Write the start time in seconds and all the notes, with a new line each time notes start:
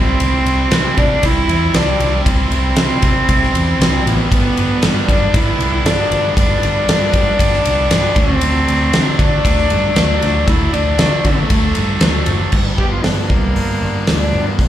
Already playing: C2 C3 G3 C4 E4
0.18 C2 C3 G3 C4 E4, ride
0.44 C2 G3 C4 E4, ride
0.69 C3 G3 C4 E4, snare, ride
0.94 G3 C4 E4, kick, ride
0.98 C3 D4
1.22 C2 C3 G3 C4 E4, kick, ride
1.48 E2 G3 C4 E4, ride
1.73 C2 C3 G3 C4 D4, snare, ride
1.78 E4
2.00 C2 G3 C4 E4, ride
2.24 C2 C3 G3 C4 E4, kick, ride
2.50 C2 G3 C4 E4, ride
2.74 C3 G3 C4 E4, snare, ride
3.00 C3 G3 C4 E4, kick, ride
3.26 C2 C3 G3 C4 E4, kick, ride
3.43 snare
3.52 E2 G3 C4 E4, ride
3.76 C2 C3 G3 C4 E4
3.81 snare, ride
4.04 A1 B3 C4 E4, ride
4.08 G3
4.30 G1 G2 D3 G3 B3, kick, ride
4.34 D4
4.57 G1 G3 B3 D4, ride
4.82 G2 D3 G3 B3 D4, snare, ride
5.06 G2 D3 G3 B3 D4, kick, ride
5.11 G2
5.33 G1 G2 D3 G3 B3 D4 E4, kick, ride
5.59 C2 G3 B3 D4, ride
5.84 G1 G2 D3 G3 B3 D4, snare, ride
6.10 G1 B3 D4, ride
6.14 G3
6.35 G1 G2 D3 G3 B3 D4, kick, ride
6.63 G1 G3 B3 D4, ride
6.87 G2 D3 G3 B3 D4, snare, ride
7.13 G2 D3 G3 B3 D4, kick, ride
7.38 G1 G2 D3 G3 B3 D4, kick, ride
7.53 snare
7.65 C2 G3 B3 D4, ride
7.90 G1 G2 D3 G3 B3 D4, snare, ride
8.16 D2 F#3 A3 C4 D4, kick, ride
8.21 D3
8.41 D2 D3 F#3 A3 D4, ride
8.67 D2 A3 D4, ride
8.71 F#3
8.93 D3 F#3 A3 D4, snare, ride
9.17 D3 F#3 A3 D4, kick, ride
9.43 D2 D3 F#3 A3 D4, kick, ride
9.58 snare
9.68 G2 F#3 A3 D4, ride
9.94 D2 D3 F#3 A3 D4, snare, ride
10.19 D2 F#3 A3 D4, ride
10.44 D2 D3 F#3 A3 D4, kick, ride
10.49 E4
10.71 D2 F#3 A3 D4, ride
10.97 D3 F#3 A3 D4, snare, ride
11.24 D3 F#3 A3 D4, kick, ride
11.49 D2 D3 F#3 A3 D4, kick, ride
11.75 G2 F#3 A3 D4, ride
12.01 D2 D3 F#3 A3, snare, ride
12.05 D4
12.26 F#1 A3 D4, ride
12.32 F#3
12.52 G1 G2 D3 G3 B3 D4, kick, crash
12.78 G3 B3 D4 G4, kick
12.92 F4
13.04 G1 D3 G3 B3 D4, snare, open hi-hat
13.16 A#3
13.29 C2 G2 D3 G3 B3 D4, kick
13.55 G1 D3 G3 B3 D4, open hi-hat
13.81 G1 G3 B3 D4
14.06 D2 G2 D3 G3 B3 D4, snare, open hi-hat
14.20 D4
14.31 G1 G3 B3 D4
14.46 A#3
14.57 B1 G2 D3 F3 G3 B3 D4, kick, open hi-hat